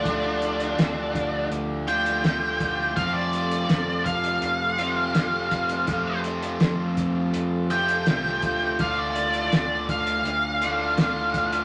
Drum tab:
HH |x-xxx-x-x-xxx-x-|x-xxx-xxx-x-x-xx|x-xxx-x-x-xxx-x-|x-xxx-xxx-x-x-xx|
SD |----o-------o---|----o-------o---|----o-------oo--|----o-------o---|
BD |o-----o-------o-|o-----o-------o-|o-----o-------o-|o-----o-------o-|